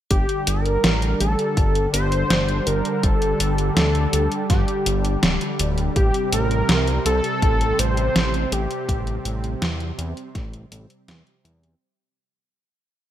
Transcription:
0.10 0.26 G1 loud
0.10 5.92 D3 medium
0.10 11.77 G3 medium
0.10 0.49 G4 loud
0.10 kick loud
0.10 closed hi-hat medium
0.29 closed hi-hat soft
0.47 0.78 G1 medium
0.47 1.20 A#4 loud
0.47 closed hi-hat loud
0.66 closed hi-hat soft
0.84 1.14 A1 loud
0.84 snare loud
0.84 closed hi-hat medium
1.02 closed hi-hat soft
1.20 1.36 A1 medium
1.20 1.90 A4 loud
1.20 closed hi-hat medium
1.39 closed hi-hat soft
1.57 1.87 G1 medium
1.57 kick loud
1.57 closed hi-hat medium
1.75 closed hi-hat soft
1.93 2.24 G1 medium
1.93 2.68 C5 loud
1.93 closed hi-hat loud
2.12 closed hi-hat soft
2.30 2.61 G1 medium
2.30 snare loud
2.30 closed hi-hat medium
2.49 closed hi-hat soft
2.67 2.82 G1 loud
2.67 3.04 A#4 loud
2.67 closed hi-hat loud
2.85 closed hi-hat soft
3.03 3.34 G1 medium
3.03 3.76 A4 loud
3.03 kick loud
3.03 closed hi-hat medium
3.22 closed hi-hat soft
3.40 3.70 G1 medium
3.40 closed hi-hat loud
3.58 closed hi-hat soft
3.76 4.07 D2 medium
3.76 4.46 A4 loud
3.76 snare loud
3.76 closed hi-hat medium
3.95 closed hi-hat soft
4.13 4.28 D2 medium
4.13 closed hi-hat medium
4.32 closed hi-hat soft
4.49 4.65 G1 loud
4.49 5.19 G4 medium
4.49 kick loud
4.49 snare soft
4.49 closed hi-hat medium
4.68 closed hi-hat soft
4.86 5.17 G1 medium
4.86 closed hi-hat loud
5.05 closed hi-hat soft
5.23 5.38 D1 loud
5.23 snare loud
5.23 closed hi-hat medium
5.41 closed hi-hat soft
5.59 5.90 D1 loud
5.59 closed hi-hat loud
5.78 closed hi-hat soft
5.96 6.11 A1 medium
5.96 11.77 C3 medium
5.96 6.30 G4 loud
5.96 kick loud
5.96 closed hi-hat medium
6.14 closed hi-hat soft
6.33 6.63 A1 medium
6.33 7.02 A#4 loud
6.33 closed hi-hat medium
6.51 closed hi-hat soft
6.69 7.00 C2 loud
6.69 snare loud
6.69 closed hi-hat medium
6.87 closed hi-hat soft
7.06 7.21 C2 medium
7.06 7.81 A4 loud
7.06 closed hi-hat medium
7.24 closed hi-hat soft
7.42 7.73 A1 medium
7.42 kick loud
7.42 closed hi-hat medium
7.61 closed hi-hat soft
7.79 8.09 A1 medium
7.79 8.54 C5 loud
7.79 closed hi-hat loud
7.97 closed hi-hat soft
8.15 8.46 A1 medium
8.15 snare loud
8.15 closed hi-hat medium
8.34 closed hi-hat soft
8.52 8.67 A1 medium
8.52 9.62 G4 loud
8.52 closed hi-hat loud
8.71 closed hi-hat soft
8.89 9.19 A1 loud
8.89 kick loud
8.89 closed hi-hat medium
9.07 closed hi-hat soft
9.25 9.56 A1 medium
9.25 closed hi-hat medium
9.44 closed hi-hat soft
9.62 9.92 E2 medium
9.62 snare loud
9.62 closed hi-hat medium
9.80 closed hi-hat soft
9.98 10.14 E2 medium
9.98 closed hi-hat medium
10.17 closed hi-hat soft
10.35 10.65 A1 medium
10.35 kick loud
10.35 snare soft
10.35 closed hi-hat medium
10.54 closed hi-hat soft
10.72 10.87 A1 medium
10.72 closed hi-hat loud
10.90 closed hi-hat soft
11.08 11.23 E2 loud
11.08 snare loud
11.08 closed hi-hat medium
11.27 closed hi-hat soft
11.45 11.75 E2 loud
11.45 closed hi-hat medium
11.63 closed hi-hat soft

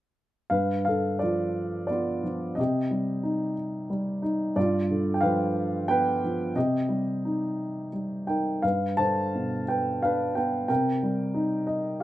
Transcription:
0.50 2.54 G2 soft
0.50 0.85 B4 soft
0.50 0.83 F5 medium
0.85 2.21 D3 soft
0.85 1.20 A4 soft
0.85 1.19 F5 medium
1.19 2.22 F3 soft
1.19 1.87 F4 soft
1.19 1.85 D5 soft
1.87 2.56 B3 soft
1.87 2.58 D5 medium
1.92 2.55 F4 soft
2.24 2.57 F3 soft
2.55 4.52 C3 soft
2.55 3.52 D#5 medium
2.60 3.54 G4 soft
2.91 3.89 G3 soft
3.23 4.21 D#4 soft
3.90 4.55 G3 soft
4.22 4.55 D#4 soft
4.56 6.51 G2 soft
4.56 5.14 F4 soft
4.56 5.18 D5 medium
4.91 6.19 D3 soft
5.14 5.22 G5 soft
5.21 6.22 F3 soft
5.21 5.85 B4 soft
5.21 5.84 F5 medium
5.88 6.53 B3 soft
5.88 6.52 B4 medium
5.88 6.57 G5 medium
6.24 6.55 F3 soft
6.55 8.59 C3 soft
6.55 7.90 G4 soft
6.55 7.89 D#5 medium
6.89 7.91 G3 soft
7.25 8.25 D#4 soft
7.93 8.61 G3 soft
8.27 8.62 D#4 soft
8.27 8.62 A#4 soft
8.27 8.64 G5 soft
8.62 10.65 G2 soft
8.62 8.97 B4 soft
8.62 9.00 F5 medium
8.97 10.32 D3 soft
8.97 9.65 C5 soft
8.97 9.64 A5 medium
9.35 10.66 B2 soft
9.68 10.01 B4 soft
9.68 10.00 G5 medium
10.02 10.67 D4 soft
10.02 10.35 B4 soft
10.02 10.37 F5 medium
10.35 10.68 B3 soft
10.35 10.68 B4 soft
10.35 10.66 G5 medium
10.68 12.03 C3 soft
10.68 11.97 A#4 soft
10.68 11.96 G5 medium
11.03 12.03 G3 soft
11.34 12.03 D#4 soft
11.67 11.98 D#5 soft

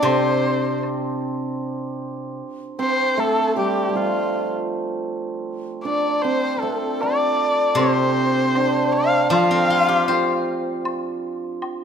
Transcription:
0.00 2.39 C3 medium
0.00 3.60 D4 medium
0.00 0.38 F4 medium
0.00 0.91 G4 medium
0.00 0.63 A4 soft
0.00 0.82 C5 medium
0.04 2.78 C4 medium
0.04 0.82 C5 medium
0.04 high woodblock medium
0.83 high woodblock soft
2.78 6.24 C4 medium
2.78 3.15 C5 medium
2.78 3.22 C5 medium
3.17 6.62 A3 medium
3.17 3.53 A4 medium
3.17 3.57 A4 medium
3.56 3.88 G3 medium
3.56 3.98 G4 medium
3.89 4.01 G3 soft
3.95 9.06 F3 medium
3.95 4.53 F4 medium
5.84 7.02 D4 medium
5.84 6.23 D5 medium
5.84 6.21 D5 medium
6.22 6.56 C4 medium
6.22 6.62 C5 medium
6.22 6.64 C5 medium
6.57 7.79 C4 soft
6.57 7.02 A4 medium
6.62 11.05 A3 medium
6.62 7.03 A4 medium
7.00 8.56 D4 medium
7.00 7.77 D5 medium
7.00 7.72 D5 medium
7.72 9.31 C3 medium
7.72 7.80 D5 soft
7.76 11.79 C4 medium
7.76 8.94 C5 medium
7.76 9.31 C5 medium
7.76 high woodblock medium
8.55 11.84 D4 medium
8.55 high woodblock soft
8.55 low woodblock soft
8.92 9.31 F5 medium
9.30 11.60 F3 medium
9.30 10.09 F4 medium
9.30 10.42 F5 medium
9.30 10.43 F5 loud
9.30 high woodblock medium
9.51 11.03 C4 soft
9.70 11.22 F4 soft
9.89 11.41 G4 soft
10.08 11.84 F4 medium
10.08 11.60 C5 soft
10.08 high woodblock soft
10.08 low woodblock soft
10.85 high woodblock medium
11.62 high woodblock soft
11.62 low woodblock soft

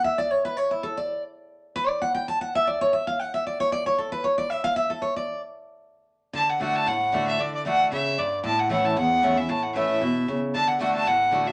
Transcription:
0.04 0.18 E5 medium
0.18 0.31 D5 loud
0.31 0.44 C#5 medium
0.45 0.57 B4 medium
0.57 0.70 C#5 loud
0.71 0.83 E4 medium
0.83 0.97 A4 medium
0.97 1.22 D5 medium
1.76 1.88 B4 loud
1.88 2.01 D5 medium
2.02 2.14 F#5 medium
2.15 2.28 G5 medium
2.28 2.40 A5 loud
2.41 2.54 F#5 medium
2.55 2.67 E5 loud
2.67 2.81 D5 medium
2.81 2.93 C#5 loud
2.93 3.07 E5 medium
3.07 3.19 F5 medium
3.19 3.33 F#5 loud
3.34 3.45 E5 loud
3.47 3.60 D5 medium
3.60 3.72 C#5 loud
3.72 3.85 D5 loud
3.86 3.98 C#5 loud
3.98 4.12 A4 medium
4.12 4.24 B4 medium
4.24 4.37 C#5 medium
4.38 4.50 D5 medium
4.50 4.64 E5 medium
4.64 4.76 F5 loud
4.76 4.90 E5 medium
4.90 5.02 A4 medium
5.02 5.16 C#5 medium
5.16 5.41 D5 medium
6.33 6.59 D3 medium
6.33 6.51 A5 loud
6.49 6.61 F#5 medium
6.60 6.85 D3 medium
6.60 6.85 A3 medium
6.60 6.86 D4 medium
6.60 6.86 F#4 medium
6.60 6.77 F#5 loud
6.75 6.89 A5 loud
6.86 7.36 A2 medium
6.86 7.26 F#5 medium
7.12 7.37 D3 medium
7.12 7.38 A3 medium
7.12 7.38 D4 medium
7.12 7.39 F#4 loud
7.27 7.41 E5 medium
7.39 7.64 D3 medium
7.39 7.53 D5 medium
7.54 7.65 D5 medium
7.65 7.90 D3 medium
7.65 7.91 A3 medium
7.65 7.91 D4 medium
7.65 7.91 F#4 medium
7.65 7.90 F#5 loud
7.92 8.17 C#3 medium
7.92 8.20 E5 loud
8.18 8.43 G2 medium
8.18 8.38 D5 medium
8.44 8.94 A2 loud
8.44 8.60 A5 loud
8.59 8.70 F#5 medium
8.69 8.95 E3 medium
8.69 8.95 A3 medium
8.69 8.96 C#4 medium
8.69 8.96 E4 medium
8.69 8.86 F#5 medium
8.85 8.97 A5 loud
8.97 9.47 E2 medium
8.97 9.39 F#5 loud
9.22 9.36 E3 medium
9.22 9.36 A3 medium
9.22 9.37 C#4 medium
9.22 9.35 E4 medium
9.36 9.49 C#4 soft
9.36 9.48 E4 medium
9.36 9.51 E5 medium
9.49 9.99 A2 loud
9.49 9.64 A5 medium
9.62 9.74 F#5 medium
9.74 10.00 E3 medium
9.74 10.00 A3 loud
9.74 10.01 C#4 medium
9.74 10.01 E4 medium
9.74 10.38 E5 loud
10.02 10.26 B2 medium
10.28 10.53 C#3 medium
10.54 10.78 D3 medium
10.54 10.70 A5 loud
10.68 10.80 F#5 medium
10.79 11.05 D3 medium
10.79 11.05 A3 medium
10.79 11.05 D4 loud
10.79 11.06 F#4 medium
10.79 10.93 F#5 medium
10.95 11.09 A5 loud
11.06 11.52 A2 medium
11.06 11.48 F#5 loud
11.31 11.45 D3 medium
11.31 11.46 A3 medium
11.31 11.46 D4 medium
11.31 11.45 F#4 medium
11.46 11.52 D4 soft
11.46 11.52 F#4 medium
11.46 11.52 E5 medium

